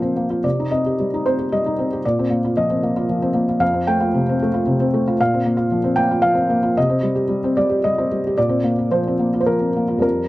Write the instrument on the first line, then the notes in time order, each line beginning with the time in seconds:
felt piano
Already playing: A#2 F3 A#3 C4 F4 A#4 C5
0.02 C4
0.16 A#3
0.30 F4
0.44 C3 D5
0.60 D#4
0.71 C4 D#5
0.86 G4
1.00 G3
1.14 D#4
1.26 C4 C5
1.39 G4
1.52 G3 D#5
1.66 D#4
1.79 C4
1.93 G4
2.05 A#2 D5
2.19 C4
2.30 A#3
2.45 F4
2.57 F3 D#5
2.70 C4
2.83 A#3
2.96 F4
3.09 F3
3.22 C4
3.34 A#3
3.49 F4
3.60 F2 F5
3.74 C4
3.87 A3 G5
4.01 F4
4.15 C3
4.29 C4
4.42 A3
4.54 F4
4.67 C3
4.80 C4
4.94 A3
5.08 F4
5.20 A#2 F5
5.34 C4
5.45 A#3
5.57 F4
5.72 F3
5.84 C4
5.96 A#3 G5
6.11 F4
6.22 F3 F5
6.34 C4
6.50 A#3
6.63 F4
6.77 C3 D#5
6.90 C4
7.03 G3
7.15 G4
7.29 G3
7.44 C4
7.57 G3 D5
7.69 G4
7.84 G3 D#5
7.98 C4
8.12 G3
8.27 G4
8.38 A#2 D5
8.49 C4
8.64 A#3
8.79 F4
8.91 F3 C5
9.07 C4
9.19 A#3
9.34 F4
9.40 C5
9.46 F3 A#4
9.59 C4
9.76 A#3
9.88 F4
9.98 F2 G3 C4 F4
10.02 A#4